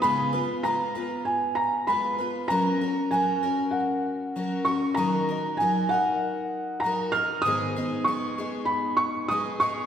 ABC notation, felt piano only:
X:1
M:4/4
L:1/8
Q:1/4=97
K:F#
V:1 name="Felt piano"
b2 a2 g a b2 | a2 g2 f3 c' | a2 g f3 a e' | d'2 c'2 b c' d' c' |]